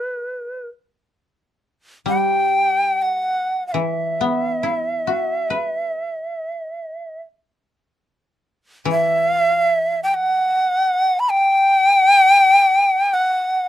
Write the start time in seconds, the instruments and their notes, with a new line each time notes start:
Already playing: shakuhachi B4
2.06 koto G3, shakuhachi G5
3.02 shakuhachi F#5
3.68 shakuhachi F#5
3.72 koto E3, shakuhachi E5
4.21 koto B3
4.63 koto E4
5.07 koto F#4
5.50 koto B4
8.85 koto E3
8.91 shakuhachi E5
10.03 shakuhachi G5
10.14 shakuhachi F#5
11.20 shakuhachi B5
11.30 shakuhachi G5
13.14 shakuhachi F#5